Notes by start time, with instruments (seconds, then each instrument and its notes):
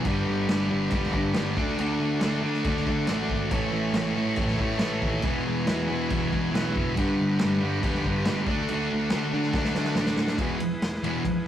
0.05 picked electric bass G1, distorted electric guitar G2 D3 G3, transistor combo organ G4 B4 D5, kick, crash
0.28 picked electric bass G1
0.49 picked electric bass G1, distorted electric guitar G2 D3 G3, snare, crash
0.69 picked electric bass G1, distorted electric guitar D3 G3
0.90 picked electric bass E1, distorted electric guitar G2 D3 G3, kick, crash
1.03 snare
1.13 picked electric bass G1, distorted electric guitar D3 G3, kick
1.34 picked electric bass G1, distorted electric guitar G2 D3 G3, snare, crash
1.57 picked electric bass D2, distorted electric guitar D3 A3 D4, transistor combo organ F#4 A4, kick
1.62 transistor combo organ D5
1.78 picked electric bass D2, distorted electric guitar D3 A3 D4, crash
2.00 picked electric bass D2
2.20 picked electric bass D2, distorted electric guitar D3 A3 D4, snare, crash
2.42 picked electric bass D3, distorted electric guitar A3 D4
2.54 snare
2.65 picked electric bass D2, distorted electric guitar D3 A3 D4, kick, crash
2.76 snare
2.86 picked electric bass D2, distorted electric guitar A3 D4, kick
3.07 picked electric bass A1, distorted electric guitar D3 A3, snare, crash
3.12 distorted electric guitar D4
3.29 picked electric bass G#1, kick
3.50 picked electric bass A1, distorted electric guitar A2 E3 A3, transistor combo organ E4 A4 C#5, kick, crash
3.72 picked electric bass A1
3.93 picked electric bass A1, distorted electric guitar A2 E3, snare, crash
3.97 distorted electric guitar A3
4.15 picked electric bass A1, distorted electric guitar E3 A3
4.36 picked electric bass F#1, distorted electric guitar A2 E3, kick, crash
4.41 distorted electric guitar A3
4.48 snare
4.58 picked electric bass A1, distorted electric guitar E3 A3, kick
4.77 picked electric bass A1, distorted electric guitar A2 E3 A3, snare, crash
5.02 picked electric bass D#2, kick
5.22 picked electric bass E1, distorted electric guitar E2 B2 E3, transistor combo organ E4 G#4 B4, kick, crash
5.47 picked electric bass E1
5.65 picked electric bass E1, distorted electric guitar E2 B2 E3, snare, crash
5.89 picked electric bass E2, distorted electric guitar B2 E3
6.09 picked electric bass E1, distorted electric guitar E2 B2 E3, kick, crash
6.30 picked electric bass E1, distorted electric guitar E3, transistor combo organ G#5, kick
6.34 distorted electric guitar B2
6.51 picked electric bass B1, distorted electric guitar E2 B2 E3, transistor combo organ F#5, snare, crash
6.76 picked electric bass F#1, transistor combo organ E5, kick
6.96 picked electric bass G1, distorted electric guitar G2 D3 G3, transistor combo organ D4 G4 B4, kick, crash
7.20 picked electric bass G1
7.39 picked electric bass G1, distorted electric guitar G2 D3 G3, snare, crash
7.61 picked electric bass G1, distorted electric guitar D3 G3
7.82 picked electric bass E1, distorted electric guitar G2 D3 G3, kick, crash
7.95 snare
8.04 picked electric bass G1, distorted electric guitar G3, kick
8.08 distorted electric guitar D3
8.25 picked electric bass G1, distorted electric guitar G2 D3 G3, snare, crash
8.46 picked electric bass D2, distorted electric guitar A3 D4, transistor combo organ D4 A4, kick
8.50 distorted electric guitar D3, transistor combo organ F#4
8.68 picked electric bass D2, distorted electric guitar D3 A3, crash
8.73 distorted electric guitar D4
8.93 picked electric bass D2
9.10 picked electric bass D2, distorted electric guitar D3 A3 D4, snare, crash
9.33 picked electric bass D3, distorted electric guitar A3 D4
9.42 snare
9.54 picked electric bass D2, distorted electric guitar D3 A3 D4, kick, snare
9.64 snare
9.75 picked electric bass D2, distorted electric guitar D4, snare
9.79 distorted electric guitar A3
9.84 snare
9.95 picked electric bass A1, distorted electric guitar D3 A3, snare
9.99 distorted electric guitar D4
10.06 snare
10.16 picked electric bass A2, snare
10.27 snare
10.37 picked electric bass E1, distorted electric guitar E2 B2 E3, transistor combo organ E4 G#4 B4, kick, ride
10.60 picked electric bass E1, ride
10.82 picked electric bass E1, snare, ride
10.94 snare
11.02 picked electric bass E1, distorted electric guitar E2 B2 E3, ride
11.24 picked electric bass E1, kick, ride